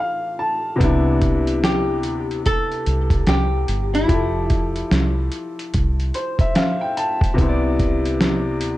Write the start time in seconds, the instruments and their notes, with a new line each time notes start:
Already playing: upright piano E3 F3 G4 A4
0.00 upright piano F5
0.39 upright piano A5
0.76 upright piano C3 B3
0.81 fingered electric bass C2, upright piano D4 E4, kick, closed hi-hat
1.22 kick, closed hi-hat
1.47 closed hi-hat
1.64 hollow-body jazz guitar G4, snare, closed hi-hat
2.03 fingered electric bass D2, closed hi-hat
2.31 closed hi-hat
2.46 hollow-body jazz guitar A4, kick, closed hi-hat
2.71 closed hi-hat
2.86 fingered electric bass C2, closed hi-hat
3.10 kick, closed hi-hat
3.27 fingered electric bass C2, hollow-body jazz guitar G4, snare, closed hi-hat
3.68 fingered electric bass G1, closed hi-hat
3.95 hollow-body jazz guitar E4, closed hi-hat
4.05 upright piano F3 E4
4.09 fingered electric bass F1, upright piano G4 A4, kick, closed hi-hat
4.50 kick, closed hi-hat
4.76 closed hi-hat
4.91 fingered electric bass C2, snare, closed hi-hat
5.32 closed hi-hat
5.59 closed hi-hat
5.74 fingered electric bass C2, kick, closed hi-hat
6.00 closed hi-hat
6.14 upright piano C5, closed hi-hat
6.39 upright piano E5, kick, closed hi-hat
6.55 upright piano F5, snare, closed hi-hat
6.81 upright piano G5
6.97 upright piano A5, closed hi-hat
7.21 kick, closed hi-hat
7.34 upright piano C3 B3
7.38 fingered electric bass C2, upright piano E4 C5, kick, closed hi-hat
7.48 upright piano D5
7.79 kick, closed hi-hat
8.05 closed hi-hat
8.20 snare, closed hi-hat
8.61 fingered electric bass D2, closed hi-hat